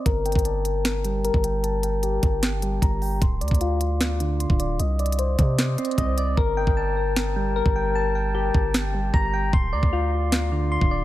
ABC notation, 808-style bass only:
X:1
M:4/4
L:1/16
Q:1/4=152
K:Gm
V:1 name="808-style bass" clef=bass
G,,,3 G,,,8- G,,,2 G,,,3- | G,,,6 G,,,6 G,,,4 | D,,,2 D,, D,,8- D,,2 D,,,3 | C,,6 C,4 z2 C,,4 |
G,,,3 G,,,8- G,,,2 G,,,3- | G,,,6 G,,,6 G,,,4 | D,,,2 D,, D,,8- D,,2 D,,,3 |]